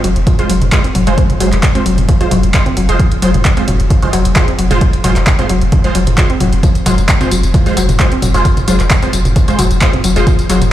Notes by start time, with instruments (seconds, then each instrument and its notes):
0.04 sub bass F1, synth arpeggio sound F#3, open hi-hat
0.16 sub bass F1, closed hi-hat
0.27 synth arpeggio sound F3, kick, closed hi-hat, mid tom
0.39 synth stab G#3 F4 C5, closed hi-hat
0.49 sub bass F1, synth arpeggio sound F#3, open hi-hat
0.62 sub bass F1, closed hi-hat, mid tom
0.72 synth stab G#3 F4 C5, kick, clap, closed hi-hat
0.84 synth arpeggio sound C4, closed hi-hat
0.95 sub bass F1, synth arpeggio sound F#3, mid tom, open hi-hat
1.07 sub bass F1, synth stab G#3 F4 C5, closed hi-hat
1.18 synth arpeggio sound F3, kick, closed hi-hat
1.30 closed hi-hat, mid tom
1.40 sub bass F1, synth arpeggio sound F#3, synth stab G#3 F4 C5, open hi-hat
1.52 sub bass F1, clap, closed hi-hat
1.63 kick, clap, closed hi-hat, mid tom
1.75 synth stab G#3 F4 C5, synth arpeggio sound C4, closed hi-hat
1.86 sub bass F1, synth arpeggio sound F#3, open hi-hat
1.98 sub bass F1, closed hi-hat, mid tom
2.09 synth arpeggio sound F3, kick, closed hi-hat
2.21 synth stab G#3 F4 C5, closed hi-hat
2.31 sub bass F1, synth arpeggio sound F#3, mid tom, open hi-hat
2.43 sub bass F1, closed hi-hat
2.54 synth stab G#3 F4 C5, kick, clap, closed hi-hat
2.66 synth arpeggio sound C4, closed hi-hat, mid tom
2.77 sub bass F1, synth arpeggio sound F#3, open hi-hat
2.89 sub bass F1, synth stab G#3 F4 C5, closed hi-hat
2.99 synth arpeggio sound F3, kick, closed hi-hat, mid tom
3.12 closed hi-hat
3.22 sub bass F1, synth arpeggio sound F#3, synth stab G#3 F4 C5, open hi-hat
3.34 sub bass F1, closed hi-hat, mid tom
3.45 kick, clap, closed hi-hat
3.57 synth stab G#3 F4 C5, synth arpeggio sound C4, closed hi-hat
3.68 sub bass F1, synth arpeggio sound F#3, mid tom, open hi-hat
3.80 sub bass F1, closed hi-hat
3.90 synth arpeggio sound F3, kick, closed hi-hat
4.02 synth stab G#3 F4 C5, closed hi-hat, mid tom
4.13 sub bass F1, synth arpeggio sound F#3, open hi-hat
4.25 sub bass F1, closed hi-hat
4.36 synth stab G#3 F4 C5, kick, clap, closed hi-hat, mid tom
4.48 synth arpeggio sound C4, closed hi-hat
4.59 sub bass F1, synth arpeggio sound F#3, open hi-hat
4.71 sub bass F1, synth stab G#3 F4 C5, closed hi-hat, mid tom
4.81 synth arpeggio sound F3, kick, closed hi-hat
4.93 closed hi-hat
5.04 sub bass F1, synth arpeggio sound F#3, synth stab G#3 F4 C5, mid tom, open hi-hat
5.16 sub bass F1, clap, closed hi-hat
5.27 kick, clap, closed hi-hat
5.39 synth stab G#3 F4 C5, synth arpeggio sound C4, closed hi-hat, mid tom
5.49 sub bass F1, synth arpeggio sound F#3, open hi-hat
5.62 sub bass F1, closed hi-hat
5.72 synth arpeggio sound F3, kick, closed hi-hat, mid tom
5.84 synth stab G#3 F4 C5, closed hi-hat
5.95 sub bass F1, synth arpeggio sound F#3, open hi-hat
6.07 sub bass F1, closed hi-hat, mid tom
6.18 synth stab G#3 F4 C5, kick, clap, closed hi-hat
6.30 synth arpeggio sound C4, closed hi-hat
6.40 sub bass F1, synth arpeggio sound F#3, mid tom, open hi-hat
6.52 sub bass F1, closed hi-hat
6.63 synth arpeggio sound F3, kick, closed hi-hat, tambourine
6.75 closed hi-hat, tambourine
6.86 sub bass F1, synth arpeggio sound F#3, synth stab G#3 F4 C5, mid tom, open hi-hat, tambourine
6.98 sub bass F1, closed hi-hat, tambourine
7.09 kick, clap, closed hi-hat, tambourine
7.21 synth stab G#3 F4 C5, synth arpeggio sound C4, closed hi-hat, mid tom, tambourine
7.31 sub bass F1, synth arpeggio sound F#3, open hi-hat, tambourine
7.43 sub bass F1, closed hi-hat, tambourine
7.54 synth arpeggio sound F3, kick, closed hi-hat, mid tom, tambourine
7.66 synth stab G#3 F4 C5, closed hi-hat, tambourine
7.77 sub bass F1, synth arpeggio sound F#3, open hi-hat, tambourine
7.89 sub bass F1, closed hi-hat, mid tom, tambourine
8.00 synth stab G#3 F4 C5, kick, clap, closed hi-hat, tambourine
8.12 synth arpeggio sound C4, closed hi-hat
8.22 sub bass F1, synth arpeggio sound F#3, mid tom, open hi-hat, tambourine
8.34 sub bass F1, synth stab G#3 F4 C5, closed hi-hat, tambourine
8.45 synth arpeggio sound F3, kick, closed hi-hat, tambourine
8.57 closed hi-hat, mid tom, tambourine
8.68 sub bass F1, synth arpeggio sound F#3, synth stab G#3 F4 C5, open hi-hat, tambourine
8.80 sub bass F1, clap, closed hi-hat, tambourine
8.90 kick, clap, closed hi-hat, mid tom, tambourine
9.03 synth stab G#3 F4 C5, synth arpeggio sound C4, closed hi-hat, tambourine
9.13 sub bass F1, synth arpeggio sound F#3, open hi-hat, tambourine
9.25 sub bass F1, closed hi-hat, mid tom, tambourine
9.36 synth arpeggio sound F3, kick, closed hi-hat, tambourine
9.48 synth stab G#3 F4 C5, closed hi-hat, tambourine
9.59 sub bass F1, synth arpeggio sound F#3, mid tom, open hi-hat, tambourine
9.71 sub bass F1, closed hi-hat, tambourine
9.81 synth stab G#3 F4 C5, kick, clap, closed hi-hat, tambourine
9.93 synth arpeggio sound C4, closed hi-hat, mid tom
10.04 sub bass F1, synth arpeggio sound F#3, open hi-hat, tambourine
10.16 sub bass F1, synth stab G#3 F4 C5, closed hi-hat, tambourine
10.27 synth arpeggio sound F3, kick, closed hi-hat, mid tom, tambourine
10.39 closed hi-hat, tambourine
10.50 sub bass F1, synth arpeggio sound F#3, synth stab G#3 F4 C5, open hi-hat, tambourine
10.62 sub bass F1, closed hi-hat, mid tom, tambourine